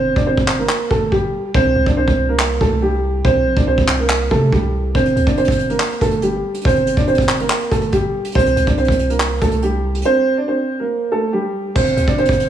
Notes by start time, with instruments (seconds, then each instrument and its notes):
Already playing: 808-style bass G1, grand piano C4 C5
0.16 808-style bass G1, grand piano D4 D5, kick
0.26 grand piano C4 C5
0.37 808-style bass G1, kick
0.48 clap
0.58 grand piano A#3 A#4
0.69 clap
0.91 808-style bass G1, grand piano A3 A4, kick
1.12 808-style bass G1, grand piano G3 G4, kick
1.54 808-style bass C2, grand piano C4 C5, kick
1.76 808-style bass C2
1.86 808-style bass C2, grand piano D4 D5, kick
1.97 grand piano C4 C5
2.08 808-style bass C2, kick
2.29 grand piano A#3 A#4
2.40 clap
2.61 808-style bass C2, grand piano A3 A4, kick
2.82 grand piano G3 G4
3.25 808-style bass C2, grand piano C4 C5, kick
3.46 808-style bass A#1
3.57 808-style bass C2, grand piano D4 D5, kick
3.67 grand piano C4 C5
3.78 808-style bass C2, kick
3.88 clap
3.99 grand piano A#3 A#4
4.10 clap
4.31 808-style bass C3, grand piano A3 A4, kick
4.52 808-style bass C2, grand piano G3 G4, kick
4.95 808-style bass G1, grand piano C4 C5, kick, closed hi-hat
5.06 closed hi-hat
5.16 808-style bass D2, closed hi-hat
5.27 808-style bass G1, grand piano D4 D5, kick, closed hi-hat
5.38 grand piano C4 C5, closed hi-hat
5.45 808-style bass G1, kick, closed hi-hat
5.52 closed hi-hat
5.59 closed hi-hat
5.70 grand piano A#3 A#4, closed hi-hat
5.80 clap, closed hi-hat
5.91 closed hi-hat
6.01 808-style bass G1, grand piano A3 A4, kick, closed hi-hat
6.11 closed hi-hat
6.22 grand piano G3 G4, closed hi-hat
6.54 closed hi-hat
6.62 808-style bass G1, grand piano C5, kick, closed hi-hat
6.66 grand piano C4, closed hi-hat
6.76 closed hi-hat
6.87 closed hi-hat
6.97 808-style bass G1, grand piano D4 D5, kick, closed hi-hat
7.07 grand piano C4 C5, closed hi-hat
7.15 808-style bass G1, kick, closed hi-hat
7.22 closed hi-hat
7.29 clap, open hi-hat
7.39 grand piano A#3 A#4, closed hi-hat
7.50 clap, closed hi-hat
7.61 closed hi-hat
7.71 808-style bass G1, grand piano A3 A4, kick, closed hi-hat
7.82 closed hi-hat
7.92 808-style bass G1, grand piano G3 G4, kick, closed hi-hat
8.25 closed hi-hat
8.32 808-style bass C2, grand piano C5, kick, closed hi-hat
8.36 grand piano C4, closed hi-hat
8.46 closed hi-hat
8.57 808-style bass C2, closed hi-hat
8.67 808-style bass C2, grand piano D4 D5, kick, closed hi-hat
8.78 grand piano C4 C5, closed hi-hat
8.85 808-style bass C2, kick, closed hi-hat
8.92 closed hi-hat
8.99 closed hi-hat
9.10 grand piano A#3 A#4, closed hi-hat
9.20 clap, closed hi-hat
9.31 closed hi-hat
9.42 808-style bass C2, grand piano A3 A4, kick, closed hi-hat
9.52 closed hi-hat
9.62 grand piano G3 G4, closed hi-hat
9.95 closed hi-hat
10.02 grand piano C5, closed hi-hat
10.06 grand piano C4
10.37 grand piano D4 D5
10.48 grand piano C4 C5
10.80 grand piano A#3 A#4
11.12 grand piano A3 A4
11.33 grand piano G3 G4
11.75 808-style bass G1, grand piano C4 C5, kick, closed hi-hat, crash
11.86 closed hi-hat
11.97 808-style bass D2, closed hi-hat
12.07 808-style bass G1, grand piano D4 D5, kick, closed hi-hat
12.18 grand piano C4 C5, closed hi-hat
12.25 808-style bass G1, kick, closed hi-hat
12.33 closed hi-hat
12.40 closed hi-hat